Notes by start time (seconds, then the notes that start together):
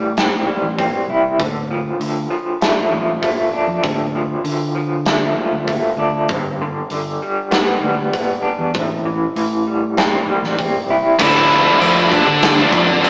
Already playing: A2 E3 G3
0.17 C4, snare, open hi-hat
0.47 G3
0.62 A1
0.79 C4, kick, open hi-hat
1.09 C2 E4
1.40 D2 D3, kick, open hi-hat
1.71 F3
2.00 D2 D3, open hi-hat
2.30 F3
2.61 A3, snare, open hi-hat
2.91 A1 F3
3.22 A3, kick, open hi-hat
3.53 D4
3.67 F2
3.83 D2 D3, kick, open hi-hat
4.15 F3
4.44 D3, open hi-hat
4.75 F3
5.06 A3, snare, open hi-hat
5.37 F3
5.51 D2
5.67 A3, kick, open hi-hat
5.97 D2 D4
6.29 G1 G2, kick, open hi-hat
6.62 D3
6.90 G1 D3, open hi-hat
7.22 G3
7.51 B3, snare, open hi-hat
7.82 D2 G3
8.13 B3, kick, open hi-hat
8.42 D4
8.59 E2
8.73 A1 A2, kick, open hi-hat
9.05 E3
9.36 A2 E3, open hi-hat
9.67 G3
9.97 C4, snare, open hi-hat
10.29 G3
10.42 A1, snare
10.59 C4, kick, open hi-hat
10.89 C2 E4
11.19 D2 D3 F3 A3 D4 E4 E5, kick, crash
11.50 crash
11.64 F3 A3 D4
11.79 F2 D3 F3 A3 D4, crash
12.09 D3 F3 A3 D4 D5, kick, crash
12.25 D3, muted distorted electric guitar stroke
12.42 snare, crash
12.54 F3 A3 D4
12.69 F2 D3 F3 A3 D4, kick, crash
12.87 muted distorted electric guitar stroke
13.01 D3 F3 A3 C4 D4 C5, crash